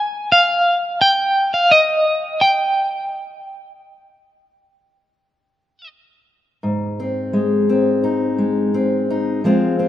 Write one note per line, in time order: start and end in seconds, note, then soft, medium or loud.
0.00 0.32 G#5 medium
0.32 0.99 F5 medium
1.01 1.53 G5 loud
1.54 1.71 F5 medium
1.71 2.44 D#5 medium
2.41 5.88 G5 medium
6.63 9.44 G#2 soft
7.00 7.69 C4 soft
7.33 8.37 G#3 soft
7.69 8.73 C4 soft
8.04 9.09 D#4 soft
8.38 9.40 G#3 soft
8.74 9.40 C4 soft
9.10 9.45 D#4 soft
9.44 9.88 F3 soft
9.44 9.88 G#3 soft
9.44 9.78 C4 soft
9.44 9.88 F4 soft
9.79 9.88 C4 soft